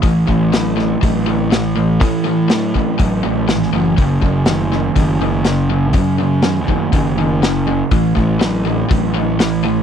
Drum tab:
HH |o---o---o---o---|o---o---o---o---|o---o---o---o---|o---o---o---o---|
SD |----o-o-----o---|----o-------oo--|----o-o-----o---|----o-------o---|
BD |o-o-----o-------|o-----o-o-------|o-o-----o-------|o-----o-o-------|

HH |o---o---o---o---|
SD |----o-------o---|
BD |o-o-----o-------|